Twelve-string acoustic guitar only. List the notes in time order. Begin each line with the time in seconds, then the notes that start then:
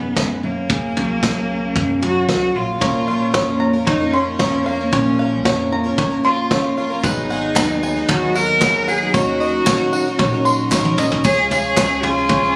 2.81 A#2 F3 A#3 C#4 F4 A#4
3.07 A#3 C#4 F4 A#4
3.34 A#2 F3 A#3 C#4 F4 A#4
3.73 A#3 C#4 F4 A#4
3.87 A#3 C#4 F4 A#4
4.00 A#3 C#4 F4 A#4
4.13 A#3 C#4 F4 A#4
4.40 A#2 F3 A#3 C#4 F4 A#4
4.66 A#3 C#4 F4 A#4
4.79 A#3 C#4 F4 A#4
4.92 A#2 F3 A#3 C#4 F4 A#4
5.19 A#3 C#4 F4 A#4
5.45 A#2 F3 A#3 C#4 F4 A#4
5.84 A#3 C#4 F4 A#4
5.98 A#3 C#4 F4 A#4
6.11 A#3 C#4 F4 A#4
6.24 A#3 C#4 F4 A#4
6.50 A#2 F3 A#3 C#4 F4 A#4
6.77 A#3 C#4 F4 A#4
6.90 A#3 C#4 F4 A#4
7.04 G#2 D#3 F#3 B3 D#4 G#4
7.30 F#3 B3 D#4 G#4
7.56 G#2 D#3 F#3 B3 D#4 G#4
7.96 F#3 B3 D#4 G#4
8.09 F#3 B3 D#4 G#4
8.22 F#3 B3 D#4 G#4
8.35 F#3 B3 D#4 G#4
8.61 G#2 D#3 F#3 B3 D#4 G#4
8.87 F#3 B3 D#4 G#4
9.01 F#3 B3 D#4 G#4
9.14 D#3 F#3 C#4 D#4 A#4
9.40 F#3 C#4 D#4 A#4
9.67 D#3 F#3 C#4 D#4 A#4
10.06 C#4 D#4 A#4
10.19 F#3 C#4 D#4 A#4
10.32 C#4 D#4 A#4
10.46 F#3 C#4 D#4 A#4
10.72 D#3 F#3 C#4 D#4 A#4
10.97 F#3 C#4 D#4 A#4
11.11 C#4 D#4 A#4
11.24 C#3 G#3 C#4 F4 G#4
11.51 G#3 C#4 F4 G#4
11.77 C#3 G#3 C#4 F4 G#4
12.04 G#3 C#4 F4 G#4
12.43 C#4 F4 G#4